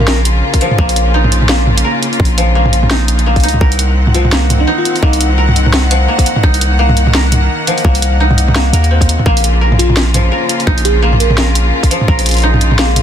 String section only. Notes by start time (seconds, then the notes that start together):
Already playing: C#3 A#3 F4
3.61 D#3 C4 F#5
6.44 A#3
9.26 C#3 A#3 F4
12.09 G#3